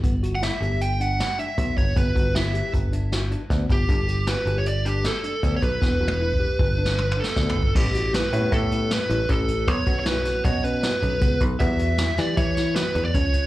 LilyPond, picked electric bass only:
\new Staff \with { instrumentName = "Picked electric bass" } { \clef bass \time 5/4 \key e \dorian \tempo 4 = 156 g,,4. g,,2 r8 b,,8 g,,8 | g,,8 g,,4. g,,2 d,8 g,,8 | g,,4. g,,2 r8 d,8 b,,8 | e,,8 e,,4. g,,2 d,8 g,,8 |
a,,4. a,8 a,4. a,,8 a,,4 | b,,8 b,,4. b,4. b,,8 cis,8 b,,8 | e,4. e8 e4. e,8 cis,4 | }